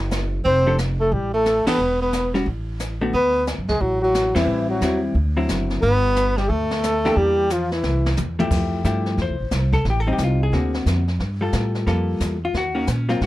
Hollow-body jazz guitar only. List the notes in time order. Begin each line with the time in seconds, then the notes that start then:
0.66 F3 D4 G4 A4
1.67 E3 D4 G4 A4
2.34 G3 C#4 F#4
3.01 D3 A3 B3 F#4
4.35 G3 C4 E4
4.82 G3 C4 E4
5.37 D3 F#3 C4 E4
7.05 E3 A#3 D4 G4
8.39 F3 A3 E4 G4
8.85 F3 A3 E4 G4
9.22 C5
9.73 A4
9.90 G4
10.00 A4
10.07 G3 C4 D#4
10.13 G4
10.24 F4
10.43 G#4
10.53 D3 A#3 C4 F#4
11.41 G3 F4 A4
11.87 G3 A#3 F4 A4
12.45 F4
12.57 F#4
12.75 D#3 A#3 C#4 F#4
12.91 C#4
13.09 F#3 A#3 C4 F4